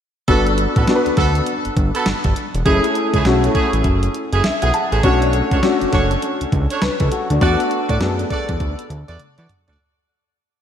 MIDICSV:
0, 0, Header, 1, 5, 480
1, 0, Start_track
1, 0, Tempo, 594059
1, 229, Time_signature, 4, 2, 24, 8
1, 8579, End_track
2, 0, Start_track
2, 0, Title_t, "Horn section"
2, 0, Program_c, 0, 61
2, 225, Note_on_c, 0, 59, 82
2, 229, Note_on_c, 0, 66, 81
2, 230, Note_on_c, 0, 69, 94
2, 368, Note_off_c, 0, 59, 0
2, 370, Note_off_c, 0, 66, 0
2, 371, Note_off_c, 0, 69, 0
2, 612, Note_on_c, 0, 59, 79
2, 616, Note_on_c, 0, 66, 73
2, 618, Note_on_c, 0, 69, 81
2, 701, Note_off_c, 0, 59, 0
2, 703, Note_off_c, 0, 66, 0
2, 704, Note_off_c, 0, 69, 0
2, 946, Note_on_c, 0, 59, 77
2, 949, Note_on_c, 0, 66, 72
2, 950, Note_on_c, 0, 69, 91
2, 1089, Note_off_c, 0, 59, 0
2, 1090, Note_off_c, 0, 66, 0
2, 1090, Note_off_c, 0, 69, 0
2, 1572, Note_on_c, 0, 59, 78
2, 1574, Note_on_c, 0, 66, 66
2, 1577, Note_on_c, 0, 69, 83
2, 1661, Note_off_c, 0, 59, 0
2, 1662, Note_off_c, 0, 66, 0
2, 1664, Note_off_c, 0, 69, 0
2, 2145, Note_on_c, 0, 57, 89
2, 2146, Note_on_c, 0, 64, 84
2, 2150, Note_on_c, 0, 68, 92
2, 2288, Note_off_c, 0, 57, 0
2, 2289, Note_off_c, 0, 64, 0
2, 2291, Note_off_c, 0, 68, 0
2, 2535, Note_on_c, 0, 57, 73
2, 2536, Note_on_c, 0, 64, 72
2, 2538, Note_on_c, 0, 68, 80
2, 2623, Note_off_c, 0, 57, 0
2, 2623, Note_off_c, 0, 64, 0
2, 2624, Note_off_c, 0, 68, 0
2, 2863, Note_on_c, 0, 57, 77
2, 2867, Note_on_c, 0, 64, 67
2, 2869, Note_on_c, 0, 68, 87
2, 3007, Note_off_c, 0, 57, 0
2, 3009, Note_off_c, 0, 64, 0
2, 3010, Note_off_c, 0, 68, 0
2, 3492, Note_on_c, 0, 57, 70
2, 3495, Note_on_c, 0, 64, 66
2, 3498, Note_on_c, 0, 68, 85
2, 3581, Note_off_c, 0, 57, 0
2, 3583, Note_off_c, 0, 64, 0
2, 3584, Note_off_c, 0, 68, 0
2, 3733, Note_on_c, 0, 57, 68
2, 3735, Note_on_c, 0, 64, 66
2, 3738, Note_on_c, 0, 68, 79
2, 3822, Note_off_c, 0, 57, 0
2, 3823, Note_off_c, 0, 64, 0
2, 3825, Note_off_c, 0, 68, 0
2, 3973, Note_on_c, 0, 57, 82
2, 3974, Note_on_c, 0, 64, 65
2, 3977, Note_on_c, 0, 68, 83
2, 4062, Note_off_c, 0, 57, 0
2, 4062, Note_off_c, 0, 64, 0
2, 4064, Note_off_c, 0, 68, 0
2, 4064, Note_on_c, 0, 62, 97
2, 4068, Note_on_c, 0, 69, 80
2, 4070, Note_on_c, 0, 73, 98
2, 4208, Note_off_c, 0, 62, 0
2, 4210, Note_off_c, 0, 69, 0
2, 4210, Note_off_c, 0, 73, 0
2, 4454, Note_on_c, 0, 62, 72
2, 4457, Note_on_c, 0, 69, 67
2, 4460, Note_on_c, 0, 73, 79
2, 4542, Note_off_c, 0, 62, 0
2, 4544, Note_off_c, 0, 69, 0
2, 4545, Note_off_c, 0, 73, 0
2, 4785, Note_on_c, 0, 62, 81
2, 4786, Note_on_c, 0, 69, 67
2, 4789, Note_on_c, 0, 73, 83
2, 4928, Note_off_c, 0, 62, 0
2, 4929, Note_off_c, 0, 69, 0
2, 4930, Note_off_c, 0, 73, 0
2, 5416, Note_on_c, 0, 62, 71
2, 5419, Note_on_c, 0, 69, 68
2, 5421, Note_on_c, 0, 73, 82
2, 5503, Note_off_c, 0, 62, 0
2, 5505, Note_off_c, 0, 69, 0
2, 5506, Note_off_c, 0, 73, 0
2, 5987, Note_on_c, 0, 66, 93
2, 5990, Note_on_c, 0, 69, 86
2, 5992, Note_on_c, 0, 74, 93
2, 6129, Note_off_c, 0, 66, 0
2, 6131, Note_off_c, 0, 69, 0
2, 6132, Note_off_c, 0, 74, 0
2, 6377, Note_on_c, 0, 66, 71
2, 6379, Note_on_c, 0, 69, 65
2, 6383, Note_on_c, 0, 74, 82
2, 6464, Note_off_c, 0, 66, 0
2, 6465, Note_off_c, 0, 69, 0
2, 6467, Note_off_c, 0, 74, 0
2, 6707, Note_on_c, 0, 66, 75
2, 6709, Note_on_c, 0, 69, 72
2, 6712, Note_on_c, 0, 74, 85
2, 6849, Note_off_c, 0, 66, 0
2, 6850, Note_off_c, 0, 69, 0
2, 6852, Note_off_c, 0, 74, 0
2, 7336, Note_on_c, 0, 66, 71
2, 7338, Note_on_c, 0, 69, 69
2, 7340, Note_on_c, 0, 74, 88
2, 7423, Note_off_c, 0, 66, 0
2, 7424, Note_off_c, 0, 69, 0
2, 7426, Note_off_c, 0, 74, 0
2, 7575, Note_on_c, 0, 66, 70
2, 7578, Note_on_c, 0, 69, 62
2, 7581, Note_on_c, 0, 74, 78
2, 7663, Note_off_c, 0, 66, 0
2, 7664, Note_off_c, 0, 69, 0
2, 7666, Note_off_c, 0, 74, 0
2, 7817, Note_on_c, 0, 66, 75
2, 7821, Note_on_c, 0, 69, 74
2, 7823, Note_on_c, 0, 74, 85
2, 7904, Note_off_c, 0, 66, 0
2, 7906, Note_off_c, 0, 69, 0
2, 7907, Note_off_c, 0, 74, 0
2, 8579, End_track
3, 0, Start_track
3, 0, Title_t, "Grand piano"
3, 0, Program_c, 1, 0
3, 225, Note_on_c, 1, 59, 77
3, 229, Note_on_c, 1, 62, 73
3, 232, Note_on_c, 1, 66, 66
3, 234, Note_on_c, 1, 69, 84
3, 369, Control_c, 1, 64, 127
3, 659, Note_off_c, 1, 59, 0
3, 661, Note_off_c, 1, 62, 0
3, 662, Note_off_c, 1, 66, 0
3, 664, Note_off_c, 1, 69, 0
3, 708, Note_on_c, 1, 59, 79
3, 709, Note_on_c, 1, 62, 76
3, 715, Note_on_c, 1, 66, 73
3, 717, Note_on_c, 1, 69, 68
3, 770, Note_on_c, 1, 71, 89
3, 778, Note_off_c, 1, 69, 0
3, 1569, Note_off_c, 1, 59, 0
3, 1569, Note_off_c, 1, 62, 0
3, 1572, Note_off_c, 1, 66, 0
3, 1600, Note_off_c, 1, 71, 0
3, 2141, Note_on_c, 1, 56, 61
3, 2143, Note_on_c, 1, 61, 67
3, 2147, Note_on_c, 1, 64, 75
3, 2151, Note_on_c, 1, 68, 89
3, 2159, Control_c, 1, 64, 0
3, 2193, Note_on_c, 1, 57, 78
3, 2210, Note_off_c, 1, 56, 0
3, 2300, Control_c, 1, 64, 127
3, 2578, Note_off_c, 1, 61, 0
3, 2580, Note_off_c, 1, 64, 0
3, 2582, Note_off_c, 1, 68, 0
3, 2603, Note_off_c, 1, 57, 0
3, 2625, Note_on_c, 1, 57, 80
3, 2628, Note_on_c, 1, 61, 75
3, 2631, Note_on_c, 1, 64, 72
3, 2634, Note_on_c, 1, 66, 88
3, 3487, Note_off_c, 1, 57, 0
3, 3489, Note_off_c, 1, 61, 0
3, 3491, Note_off_c, 1, 64, 0
3, 3492, Note_off_c, 1, 66, 0
3, 3589, Note_on_c, 1, 76, 76
3, 3728, Note_off_c, 1, 76, 0
3, 3734, Note_on_c, 1, 78, 72
3, 3821, Note_off_c, 1, 78, 0
3, 3829, Note_on_c, 1, 81, 71
3, 4052, Note_off_c, 1, 81, 0
3, 4064, Note_on_c, 1, 57, 83
3, 4067, Note_on_c, 1, 61, 74
3, 4070, Note_on_c, 1, 62, 75
3, 4074, Note_on_c, 1, 66, 92
3, 4079, Control_c, 1, 64, 0
3, 4237, Control_c, 1, 64, 127
3, 4499, Note_off_c, 1, 57, 0
3, 4500, Note_off_c, 1, 61, 0
3, 4501, Note_off_c, 1, 62, 0
3, 4504, Note_off_c, 1, 66, 0
3, 4545, Note_on_c, 1, 57, 83
3, 4549, Note_on_c, 1, 61, 77
3, 4552, Note_on_c, 1, 62, 78
3, 4556, Note_on_c, 1, 66, 91
3, 5407, Note_off_c, 1, 57, 0
3, 5409, Note_off_c, 1, 61, 0
3, 5411, Note_off_c, 1, 62, 0
3, 5413, Note_off_c, 1, 66, 0
3, 5510, Note_on_c, 1, 71, 68
3, 5651, Note_off_c, 1, 71, 0
3, 5661, Note_on_c, 1, 69, 68
3, 5746, Note_off_c, 1, 69, 0
3, 5752, Note_on_c, 1, 66, 72
3, 5892, Note_off_c, 1, 66, 0
3, 5900, Note_on_c, 1, 62, 58
3, 5981, Note_off_c, 1, 62, 0
3, 5987, Note_on_c, 1, 57, 81
3, 5989, Note_on_c, 1, 59, 75
3, 5993, Note_on_c, 1, 62, 73
3, 5997, Control_c, 1, 64, 0
3, 5997, Note_on_c, 1, 66, 92
3, 6137, Control_c, 1, 64, 127
3, 6420, Note_off_c, 1, 57, 0
3, 6421, Note_off_c, 1, 59, 0
3, 6423, Note_off_c, 1, 62, 0
3, 6425, Note_off_c, 1, 66, 0
3, 6468, Note_on_c, 1, 57, 77
3, 6470, Note_on_c, 1, 59, 75
3, 6474, Note_on_c, 1, 62, 69
3, 6476, Note_on_c, 1, 68, 69
3, 6531, Note_on_c, 1, 69, 89
3, 6538, Note_off_c, 1, 68, 0
3, 7329, Note_off_c, 1, 57, 0
3, 7330, Note_off_c, 1, 59, 0
3, 7332, Note_off_c, 1, 62, 0
3, 7360, Note_off_c, 1, 69, 0
3, 7920, Control_c, 1, 64, 0
3, 8579, End_track
4, 0, Start_track
4, 0, Title_t, "Analog synth bass"
4, 0, Program_c, 2, 38
4, 228, Note_on_c, 2, 31, 104
4, 539, Note_off_c, 2, 31, 0
4, 614, Note_on_c, 2, 33, 93
4, 689, Note_off_c, 2, 33, 0
4, 858, Note_on_c, 2, 38, 52
4, 894, Note_off_c, 2, 38, 0
4, 948, Note_on_c, 2, 38, 86
4, 1140, Note_off_c, 2, 38, 0
4, 1338, Note_on_c, 2, 31, 49
4, 1374, Note_off_c, 2, 31, 0
4, 1426, Note_on_c, 2, 31, 103
4, 1546, Note_off_c, 2, 31, 0
4, 1668, Note_on_c, 2, 31, 49
4, 1728, Note_off_c, 2, 31, 0
4, 1816, Note_on_c, 2, 31, 87
4, 1890, Note_off_c, 2, 31, 0
4, 2055, Note_on_c, 2, 28, 91
4, 2129, Note_off_c, 2, 28, 0
4, 2146, Note_on_c, 2, 30, 101
4, 2266, Note_off_c, 2, 30, 0
4, 2534, Note_on_c, 2, 37, 89
4, 2608, Note_off_c, 2, 37, 0
4, 2626, Note_on_c, 2, 35, 94
4, 2820, Note_off_c, 2, 35, 0
4, 3016, Note_on_c, 2, 33, 87
4, 3090, Note_off_c, 2, 33, 0
4, 3108, Note_on_c, 2, 30, 103
4, 3300, Note_off_c, 2, 30, 0
4, 3493, Note_on_c, 2, 30, 95
4, 3568, Note_off_c, 2, 30, 0
4, 3589, Note_on_c, 2, 35, 47
4, 3648, Note_off_c, 2, 35, 0
4, 3739, Note_on_c, 2, 35, 92
4, 3811, Note_off_c, 2, 35, 0
4, 3975, Note_on_c, 2, 33, 88
4, 4049, Note_off_c, 2, 33, 0
4, 4067, Note_on_c, 2, 35, 97
4, 4379, Note_off_c, 2, 35, 0
4, 4455, Note_on_c, 2, 37, 91
4, 4529, Note_off_c, 2, 37, 0
4, 4699, Note_on_c, 2, 30, 51
4, 4735, Note_off_c, 2, 30, 0
4, 4790, Note_on_c, 2, 30, 91
4, 4982, Note_off_c, 2, 30, 0
4, 5180, Note_on_c, 2, 37, 46
4, 5216, Note_off_c, 2, 37, 0
4, 5272, Note_on_c, 2, 37, 102
4, 5390, Note_off_c, 2, 37, 0
4, 5513, Note_on_c, 2, 37, 48
4, 5571, Note_off_c, 2, 37, 0
4, 5659, Note_on_c, 2, 37, 97
4, 5731, Note_off_c, 2, 37, 0
4, 5901, Note_on_c, 2, 38, 93
4, 5973, Note_off_c, 2, 38, 0
4, 5991, Note_on_c, 2, 40, 101
4, 6109, Note_off_c, 2, 40, 0
4, 6380, Note_on_c, 2, 45, 94
4, 6452, Note_off_c, 2, 45, 0
4, 6470, Note_on_c, 2, 42, 100
4, 6662, Note_off_c, 2, 42, 0
4, 6862, Note_on_c, 2, 40, 91
4, 6933, Note_off_c, 2, 40, 0
4, 6951, Note_on_c, 2, 38, 99
4, 7069, Note_off_c, 2, 38, 0
4, 7191, Note_on_c, 2, 38, 90
4, 7309, Note_off_c, 2, 38, 0
4, 7343, Note_on_c, 2, 40, 99
4, 7414, Note_off_c, 2, 40, 0
4, 7582, Note_on_c, 2, 52, 101
4, 7653, Note_off_c, 2, 52, 0
4, 7823, Note_on_c, 2, 38, 84
4, 7894, Note_off_c, 2, 38, 0
4, 8579, End_track
5, 0, Start_track
5, 0, Title_t, "Drums"
5, 225, Note_on_c, 9, 42, 69
5, 227, Note_on_c, 9, 36, 112
5, 306, Note_off_c, 9, 42, 0
5, 308, Note_off_c, 9, 36, 0
5, 376, Note_on_c, 9, 42, 57
5, 457, Note_off_c, 9, 42, 0
5, 467, Note_on_c, 9, 42, 72
5, 548, Note_off_c, 9, 42, 0
5, 615, Note_on_c, 9, 36, 98
5, 616, Note_on_c, 9, 42, 65
5, 696, Note_off_c, 9, 36, 0
5, 697, Note_off_c, 9, 42, 0
5, 707, Note_on_c, 9, 38, 101
5, 709, Note_on_c, 9, 42, 64
5, 788, Note_off_c, 9, 38, 0
5, 789, Note_off_c, 9, 42, 0
5, 857, Note_on_c, 9, 42, 52
5, 938, Note_off_c, 9, 42, 0
5, 945, Note_on_c, 9, 38, 64
5, 945, Note_on_c, 9, 42, 56
5, 947, Note_on_c, 9, 36, 86
5, 1026, Note_off_c, 9, 38, 0
5, 1026, Note_off_c, 9, 42, 0
5, 1028, Note_off_c, 9, 36, 0
5, 1094, Note_on_c, 9, 42, 53
5, 1175, Note_off_c, 9, 42, 0
5, 1183, Note_on_c, 9, 42, 74
5, 1264, Note_off_c, 9, 42, 0
5, 1334, Note_on_c, 9, 42, 53
5, 1415, Note_off_c, 9, 42, 0
5, 1427, Note_on_c, 9, 36, 91
5, 1427, Note_on_c, 9, 42, 64
5, 1508, Note_off_c, 9, 36, 0
5, 1508, Note_off_c, 9, 42, 0
5, 1574, Note_on_c, 9, 42, 53
5, 1655, Note_off_c, 9, 42, 0
5, 1664, Note_on_c, 9, 38, 115
5, 1664, Note_on_c, 9, 42, 71
5, 1744, Note_off_c, 9, 42, 0
5, 1745, Note_off_c, 9, 38, 0
5, 1811, Note_on_c, 9, 42, 52
5, 1815, Note_on_c, 9, 36, 83
5, 1892, Note_off_c, 9, 42, 0
5, 1896, Note_off_c, 9, 36, 0
5, 1908, Note_on_c, 9, 42, 76
5, 1989, Note_off_c, 9, 42, 0
5, 2057, Note_on_c, 9, 42, 47
5, 2137, Note_off_c, 9, 42, 0
5, 2147, Note_on_c, 9, 36, 105
5, 2147, Note_on_c, 9, 42, 68
5, 2227, Note_off_c, 9, 36, 0
5, 2228, Note_off_c, 9, 42, 0
5, 2296, Note_on_c, 9, 42, 55
5, 2377, Note_off_c, 9, 42, 0
5, 2387, Note_on_c, 9, 42, 73
5, 2467, Note_off_c, 9, 42, 0
5, 2534, Note_on_c, 9, 36, 102
5, 2535, Note_on_c, 9, 42, 63
5, 2615, Note_off_c, 9, 36, 0
5, 2616, Note_off_c, 9, 42, 0
5, 2626, Note_on_c, 9, 38, 110
5, 2628, Note_on_c, 9, 42, 66
5, 2707, Note_off_c, 9, 38, 0
5, 2709, Note_off_c, 9, 42, 0
5, 2779, Note_on_c, 9, 42, 51
5, 2859, Note_off_c, 9, 42, 0
5, 2868, Note_on_c, 9, 36, 80
5, 2868, Note_on_c, 9, 42, 63
5, 2948, Note_off_c, 9, 36, 0
5, 2949, Note_off_c, 9, 42, 0
5, 3016, Note_on_c, 9, 42, 54
5, 3097, Note_off_c, 9, 42, 0
5, 3105, Note_on_c, 9, 42, 72
5, 3107, Note_on_c, 9, 36, 86
5, 3186, Note_off_c, 9, 42, 0
5, 3187, Note_off_c, 9, 36, 0
5, 3254, Note_on_c, 9, 42, 54
5, 3335, Note_off_c, 9, 42, 0
5, 3349, Note_on_c, 9, 42, 66
5, 3430, Note_off_c, 9, 42, 0
5, 3495, Note_on_c, 9, 42, 52
5, 3576, Note_off_c, 9, 42, 0
5, 3586, Note_on_c, 9, 42, 70
5, 3587, Note_on_c, 9, 38, 109
5, 3667, Note_off_c, 9, 42, 0
5, 3668, Note_off_c, 9, 38, 0
5, 3733, Note_on_c, 9, 42, 54
5, 3814, Note_off_c, 9, 42, 0
5, 3828, Note_on_c, 9, 42, 75
5, 3909, Note_off_c, 9, 42, 0
5, 3978, Note_on_c, 9, 42, 46
5, 4059, Note_off_c, 9, 42, 0
5, 4067, Note_on_c, 9, 42, 70
5, 4068, Note_on_c, 9, 36, 108
5, 4148, Note_off_c, 9, 36, 0
5, 4148, Note_off_c, 9, 42, 0
5, 4218, Note_on_c, 9, 42, 56
5, 4298, Note_off_c, 9, 42, 0
5, 4308, Note_on_c, 9, 42, 70
5, 4389, Note_off_c, 9, 42, 0
5, 4456, Note_on_c, 9, 36, 101
5, 4457, Note_on_c, 9, 42, 64
5, 4537, Note_off_c, 9, 36, 0
5, 4538, Note_off_c, 9, 42, 0
5, 4548, Note_on_c, 9, 38, 110
5, 4550, Note_on_c, 9, 42, 68
5, 4629, Note_off_c, 9, 38, 0
5, 4631, Note_off_c, 9, 42, 0
5, 4699, Note_on_c, 9, 42, 51
5, 4780, Note_off_c, 9, 42, 0
5, 4788, Note_on_c, 9, 38, 67
5, 4788, Note_on_c, 9, 42, 58
5, 4789, Note_on_c, 9, 36, 85
5, 4869, Note_off_c, 9, 38, 0
5, 4869, Note_off_c, 9, 42, 0
5, 4870, Note_off_c, 9, 36, 0
5, 4937, Note_on_c, 9, 42, 53
5, 5018, Note_off_c, 9, 42, 0
5, 5029, Note_on_c, 9, 42, 70
5, 5110, Note_off_c, 9, 42, 0
5, 5180, Note_on_c, 9, 42, 52
5, 5261, Note_off_c, 9, 42, 0
5, 5271, Note_on_c, 9, 36, 97
5, 5273, Note_on_c, 9, 42, 60
5, 5352, Note_off_c, 9, 36, 0
5, 5354, Note_off_c, 9, 42, 0
5, 5417, Note_on_c, 9, 42, 53
5, 5498, Note_off_c, 9, 42, 0
5, 5508, Note_on_c, 9, 42, 68
5, 5509, Note_on_c, 9, 38, 118
5, 5589, Note_off_c, 9, 42, 0
5, 5590, Note_off_c, 9, 38, 0
5, 5655, Note_on_c, 9, 42, 54
5, 5659, Note_on_c, 9, 36, 82
5, 5736, Note_off_c, 9, 42, 0
5, 5739, Note_off_c, 9, 36, 0
5, 5749, Note_on_c, 9, 42, 70
5, 5830, Note_off_c, 9, 42, 0
5, 5901, Note_on_c, 9, 42, 50
5, 5981, Note_off_c, 9, 42, 0
5, 5990, Note_on_c, 9, 36, 102
5, 5990, Note_on_c, 9, 42, 71
5, 6071, Note_off_c, 9, 36, 0
5, 6071, Note_off_c, 9, 42, 0
5, 6142, Note_on_c, 9, 42, 56
5, 6222, Note_off_c, 9, 42, 0
5, 6230, Note_on_c, 9, 42, 72
5, 6310, Note_off_c, 9, 42, 0
5, 6378, Note_on_c, 9, 36, 100
5, 6379, Note_on_c, 9, 42, 67
5, 6459, Note_off_c, 9, 36, 0
5, 6460, Note_off_c, 9, 42, 0
5, 6469, Note_on_c, 9, 38, 117
5, 6471, Note_on_c, 9, 42, 67
5, 6550, Note_off_c, 9, 38, 0
5, 6552, Note_off_c, 9, 42, 0
5, 6620, Note_on_c, 9, 42, 53
5, 6701, Note_off_c, 9, 42, 0
5, 6711, Note_on_c, 9, 36, 86
5, 6711, Note_on_c, 9, 42, 64
5, 6791, Note_off_c, 9, 36, 0
5, 6791, Note_off_c, 9, 42, 0
5, 6857, Note_on_c, 9, 42, 58
5, 6860, Note_on_c, 9, 36, 92
5, 6938, Note_off_c, 9, 42, 0
5, 6940, Note_off_c, 9, 36, 0
5, 6950, Note_on_c, 9, 42, 66
5, 6951, Note_on_c, 9, 36, 90
5, 7031, Note_off_c, 9, 42, 0
5, 7032, Note_off_c, 9, 36, 0
5, 7101, Note_on_c, 9, 42, 57
5, 7182, Note_off_c, 9, 42, 0
5, 7194, Note_on_c, 9, 42, 58
5, 7275, Note_off_c, 9, 42, 0
5, 7340, Note_on_c, 9, 42, 57
5, 7421, Note_off_c, 9, 42, 0
5, 7429, Note_on_c, 9, 42, 75
5, 7430, Note_on_c, 9, 48, 55
5, 7510, Note_off_c, 9, 42, 0
5, 7510, Note_off_c, 9, 48, 0
5, 7577, Note_on_c, 9, 42, 51
5, 7658, Note_off_c, 9, 42, 0
5, 7671, Note_on_c, 9, 42, 78
5, 7671, Note_on_c, 9, 45, 85
5, 7751, Note_off_c, 9, 45, 0
5, 7752, Note_off_c, 9, 42, 0
5, 7820, Note_on_c, 9, 43, 82
5, 7821, Note_on_c, 9, 42, 45
5, 7900, Note_off_c, 9, 43, 0
5, 7902, Note_off_c, 9, 42, 0
5, 8579, End_track
0, 0, End_of_file